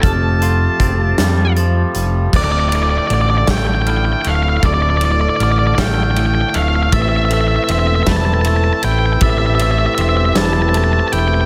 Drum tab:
CC |------|x-----|------|------|
RD |------|-xxxxx|xxxxxx|xxxxxx|
HH |xxxxxx|------|------|------|
SD |---o--|---o--|---o--|---o--|
BD |o-o---|o--o--|o--o--|o--o--|

CC |------|
RD |xxxxxx|
HH |------|
SD |---o--|
BD |o-----|